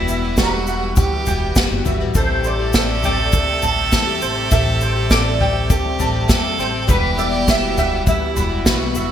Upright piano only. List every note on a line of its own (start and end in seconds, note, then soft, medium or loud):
0.00 0.37 G4 medium
0.08 1.27 E5 medium
0.38 1.56 G3 loud
0.68 1.86 F#5 medium
0.97 1.55 G4 medium
1.27 2.16 G5 medium
1.56 2.15 G4 medium
1.86 2.15 E5 medium
2.15 2.73 A4 loud
2.45 3.63 C5 medium
2.75 3.32 A4 loud
3.04 4.23 G5 medium
3.33 3.91 A4 medium
3.63 4.81 A5 medium
3.93 4.50 A4 medium
4.21 4.80 C5 medium
4.52 5.09 A4 medium
4.82 6.00 C5 medium
5.11 5.69 A4 loud
5.41 6.59 G5 medium
5.70 6.28 A4 medium
6.00 6.89 A5 medium
6.29 6.89 A4 medium
6.59 6.89 C5 medium
7.18 8.36 E5 medium
7.47 8.66 G4 medium
7.77 8.96 F#5 medium
8.07 9.12 G3 medium
8.36 9.12 B5 medium
8.66 9.12 E4 medium
8.96 9.12 E5 medium